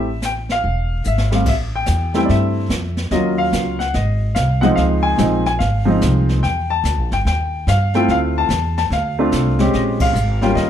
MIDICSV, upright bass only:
0, 0, Header, 1, 2, 480
1, 0, Start_track
1, 0, Tempo, 413223
1, 1701, Time_signature, 4, 2, 24, 8
1, 12428, End_track
2, 0, Start_track
2, 0, Title_t, "Upright bass"
2, 0, Program_c, 0, 32
2, 0, Note_on_c, 0, 33, 73
2, 695, Note_off_c, 0, 33, 0
2, 741, Note_on_c, 0, 28, 68
2, 1187, Note_off_c, 0, 28, 0
2, 1228, Note_on_c, 0, 32, 69
2, 1671, Note_off_c, 0, 32, 0
2, 1689, Note_on_c, 0, 33, 65
2, 2161, Note_off_c, 0, 33, 0
2, 2181, Note_on_c, 0, 40, 89
2, 2647, Note_off_c, 0, 40, 0
2, 2662, Note_on_c, 0, 43, 80
2, 3123, Note_off_c, 0, 43, 0
2, 3130, Note_on_c, 0, 41, 80
2, 3601, Note_off_c, 0, 41, 0
2, 3610, Note_on_c, 0, 39, 78
2, 4082, Note_off_c, 0, 39, 0
2, 4096, Note_on_c, 0, 37, 77
2, 4564, Note_off_c, 0, 37, 0
2, 4582, Note_on_c, 0, 32, 75
2, 5048, Note_off_c, 0, 32, 0
2, 5068, Note_on_c, 0, 36, 92
2, 5531, Note_off_c, 0, 36, 0
2, 5538, Note_on_c, 0, 37, 67
2, 6006, Note_off_c, 0, 37, 0
2, 6028, Note_on_c, 0, 34, 92
2, 6491, Note_off_c, 0, 34, 0
2, 6510, Note_on_c, 0, 32, 73
2, 6972, Note_off_c, 0, 32, 0
2, 6994, Note_on_c, 0, 36, 89
2, 7454, Note_off_c, 0, 36, 0
2, 7467, Note_on_c, 0, 40, 70
2, 7931, Note_off_c, 0, 40, 0
2, 7942, Note_on_c, 0, 38, 91
2, 8101, Note_off_c, 0, 38, 0
2, 8101, Note_on_c, 0, 34, 56
2, 8254, Note_off_c, 0, 34, 0
2, 8261, Note_on_c, 0, 31, 63
2, 8411, Note_off_c, 0, 31, 0
2, 8424, Note_on_c, 0, 39, 72
2, 8889, Note_off_c, 0, 39, 0
2, 8908, Note_on_c, 0, 43, 79
2, 9371, Note_off_c, 0, 43, 0
2, 9389, Note_on_c, 0, 38, 81
2, 9852, Note_off_c, 0, 38, 0
2, 9860, Note_on_c, 0, 40, 92
2, 10327, Note_off_c, 0, 40, 0
2, 10342, Note_on_c, 0, 38, 85
2, 10808, Note_off_c, 0, 38, 0
2, 10830, Note_on_c, 0, 36, 83
2, 11292, Note_off_c, 0, 36, 0
2, 11307, Note_on_c, 0, 34, 75
2, 11765, Note_off_c, 0, 34, 0
2, 11772, Note_on_c, 0, 32, 90
2, 12242, Note_off_c, 0, 32, 0
2, 12257, Note_on_c, 0, 39, 88
2, 12428, Note_off_c, 0, 39, 0
2, 12428, End_track
0, 0, End_of_file